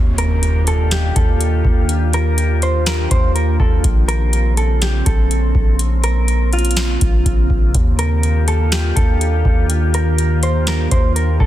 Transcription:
Already playing: D#2 D#3 A#3 D4 F4 G4, impact
0.18 A#4, closed hi-hat
0.43 closed hi-hat
0.67 A4, closed hi-hat
0.91 G4, snare, closed hi-hat
1.16 D#2 A4, kick, closed hi-hat
1.41 closed hi-hat
1.65 D#2, kick
1.89 closed hi-hat
2.13 A#4, closed hi-hat
2.38 closed hi-hat
2.62 C5, closed hi-hat
2.86 A#4, snare, closed hi-hat
3.11 D#2 C5, kick, closed hi-hat
3.35 A#4, closed hi-hat
3.60 D#2 A4, kick
3.84 A#1 C#3 C4, kick, closed hi-hat
4.08 A#4, closed hi-hat
4.33 closed hi-hat
4.57 A4, closed hi-hat
4.82 G4, snare, closed hi-hat
5.06 A#1 A4, kick, closed hi-hat
5.31 closed hi-hat
5.55 A#1, kick
5.79 A#3, closed hi-hat
6.04 A#4, closed hi-hat
6.28 closed hi-hat
6.53 F4, closed hi-hat
6.59 closed hi-hat
6.65 closed hi-hat
6.71 closed hi-hat
6.76 snare, closed hi-hat
7.01 A#1, kick, closed hi-hat
7.26 A#1, kick, closed hi-hat
7.50 A#1, kick
7.74 D#2 D#3 A#3 D4 F4 G4, kick, closed hi-hat
7.99 A#4, closed hi-hat
8.23 closed hi-hat
8.48 A4, closed hi-hat
8.72 G4, snare, closed hi-hat
8.96 D#2 A4, kick, closed hi-hat
9.21 closed hi-hat
9.45 D#2, kick
9.70 closed hi-hat
9.94 A#4, closed hi-hat
10.18 closed hi-hat
10.43 C5, closed hi-hat
10.67 A#4, snare, closed hi-hat
10.91 D#2 C5, kick, closed hi-hat
11.16 A#4, closed hi-hat
11.40 D#2 A4, kick

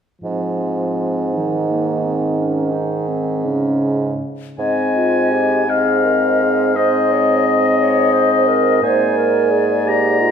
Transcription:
0.22 G#2 F3 C4
1.33 D#3 D#4
1.69 A#3
2.05 C4
2.39 C#4
2.72 D#4
3.08 C4
3.45 C#3 C#4
4.59 G#2 C4 D#5 G#5
4.96 F4
5.32 G4
5.68 C4 G#4 D#5 F5
6.04 A#4
6.41 G#4
6.75 C4 C5 D#5
7.12 C#5
7.46 D#5
7.81 C#5
8.14 C5
8.48 A#4
8.82 G#2 A#3 C5 D5 G#5
9.17 A#4
9.51 G#4
9.86 G4 A#5
10.21 F4

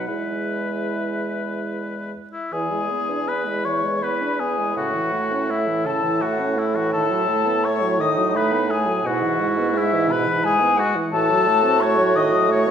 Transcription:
0.08 E2 G#3 E4 B4 E5
2.32 E4 E5
2.52 E2 E3 E4 G#4 G#5
2.72 G#3
2.90 B3
3.10 D4
3.28 B3 B4 B5
3.46 G#3
3.65 E3 C#5 C#6
3.84 G#3
4.02 B3 B4 B5
4.22 D4
4.39 B3 G#4 G#5
4.58 G#3
4.76 A2 C#3 F#4 F#5
4.94 E3
5.13 A3
5.32 C#4
5.50 A3 E4 E5
5.67 E3
5.86 C#3 A4 A5
6.03 E3
6.21 A3 F#4 F#5
6.40 C#4
6.57 A3 E4 E5
6.75 E3 F#4 F#5
6.91 D#3 A4 A5
7.11 F#3
7.28 A3
7.46 B3
7.63 A3 C#5 C#6
7.81 F#3
7.99 D#3 D#4 D#5 D#6
8.17 F#3
8.34 A3 B4 B5
8.52 B3
8.69 A3 G#4 G#5
8.86 F#3
9.04 G#2 B2 E4 F#4 F#5
9.22 E3
9.40 G#3
9.58 B3
9.75 G#3 E4 E5
9.93 E3
10.10 B2 B4 B5
10.27 E3
10.44 G#3 G#4 G#5
10.62 B3
10.77 G#3 F#4 F#5
10.96 E3
11.11 A2 E3 F#4 A4 A5
11.30 F#3
11.48 A3
11.64 C4
11.80 A3 C#5 C#6
11.98 F#3
12.15 D#3 D#5 D#6
12.32 F#3
12.49 A3 C#5 C#6
12.67 B3

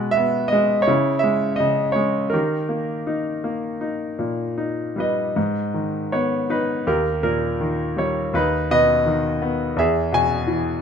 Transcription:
Already playing: B2 G#3 B4 D#5
0.11 E5
0.17 B3
0.48 D#5
0.52 G#3
0.82 C#5
0.87 C#3 E4
1.19 E5
1.23 G#3
1.56 C#3 D#5
1.92 G#3 C#5
2.30 D#3 G4 A#4
2.69 A#3
3.07 D#4
3.44 A#3
3.81 D#4
4.19 A#2
4.58 D#4
4.96 G3 B4
5.00 D#5
5.36 G#2
5.74 D#3
6.12 B3 C#5
6.50 D#4 B4
6.87 D#2 G4 A#4
7.23 A#2 A#4
7.61 D#3
7.97 G3 C#5
8.34 D#2 D#4 B4
8.71 B2 B4 D#5
9.06 D#3
9.42 B3
9.76 E2 G#4 E5
10.12 B2 G#5
10.47 E3

